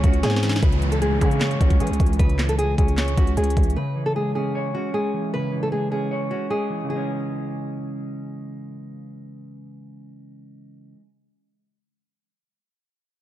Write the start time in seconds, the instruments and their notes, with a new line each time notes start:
Already playing: string section C#3 C#4 E4 G#4, clean electric guitar E3 G#3 C#5
0.03 808-style bass C#2, clean electric guitar C#4, nylon-string guitar F#4, kick, closed hi-hat
0.13 closed hi-hat
0.23 808-style bass G#2, clean electric guitar G#3, nylon-string guitar G#4, snare, closed hi-hat
0.30 snare
0.36 snare
0.42 clean electric guitar E3, snare, closed hi-hat
0.49 snare, closed hi-hat
0.56 snare
0.62 808-style bass C#2, clean electric guitar C#3, nylon-string guitar B4, kick, closed hi-hat, downlifter
0.72 closed hi-hat
0.82 clean electric guitar E3, closed hi-hat
0.92 nylon-string guitar A4, closed hi-hat
1.02 clean electric guitar G#3, nylon-string guitar G#4, closed hi-hat
1.21 808-style bass C#3, clean electric guitar C#4, nylon-string guitar G#4, kick, closed hi-hat
1.31 closed hi-hat
1.41 clean electric guitar C#5, snare, clap, closed hi-hat
1.51 closed hi-hat
1.61 808-style bass C#2, clean electric guitar C#4, nylon-string guitar F#4, kick, closed hi-hat
1.70 kick, closed hi-hat
1.80 808-style bass E3, clean electric guitar G#3, nylon-string guitar G#4, closed hi-hat
1.87 808-style bass C#2, closed hi-hat
1.93 closed hi-hat
1.99 808-style bass C#2, clean electric guitar E3, kick, closed hi-hat
2.06 closed hi-hat
2.13 closed hi-hat
2.19 808-style bass C#2, clean electric guitar C#3, nylon-string guitar B4, kick, closed hi-hat
2.29 closed hi-hat
2.39 clean electric guitar E3, snare, clap, closed hi-hat
2.49 nylon-string guitar A4, closed hi-hat
2.58 clean electric guitar G#3, nylon-string guitar G#4, closed hi-hat
2.78 808-style bass C#2, clean electric guitar C#4, nylon-string guitar G#4, kick, closed hi-hat
2.88 closed hi-hat
2.97 clean electric guitar C#5, snare, clap, closed hi-hat
3.08 closed hi-hat
3.17 808-style bass C#2, clean electric guitar C#4, nylon-string guitar F#4, kick, closed hi-hat
3.27 closed hi-hat
3.37 808-style bass C#2, clean electric guitar G#3, nylon-string guitar G#4, closed hi-hat
3.44 closed hi-hat
3.50 closed hi-hat
3.57 808-style bass C#2, clean electric guitar E3, kick, closed hi-hat
3.63 closed hi-hat
3.70 closed hi-hat
3.76 clean electric guitar C#3, nylon-string guitar B4
3.96 clean electric guitar E3
4.06 nylon-string guitar A4
4.16 clean electric guitar G#3, nylon-string guitar G#4
4.35 clean electric guitar C#4, nylon-string guitar G#4
4.55 clean electric guitar C#5
4.74 clean electric guitar C#4, nylon-string guitar F#4
4.94 clean electric guitar G#3, nylon-string guitar G#4
5.14 clean electric guitar E3
5.34 clean electric guitar C#3, nylon-string guitar B4
5.52 clean electric guitar E3
5.63 nylon-string guitar A4
5.72 clean electric guitar G#3, nylon-string guitar G#4
5.91 clean electric guitar C#4, nylon-string guitar G#4
6.11 clean electric guitar C#5
6.31 clean electric guitar C#4, nylon-string guitar F#4
6.50 clean electric guitar G#3, nylon-string guitar G#4
6.70 clean electric guitar E3
6.84 clean electric guitar C#3
6.88 clean electric guitar E3, nylon-string guitar G#4
6.92 clean electric guitar G#3 C#4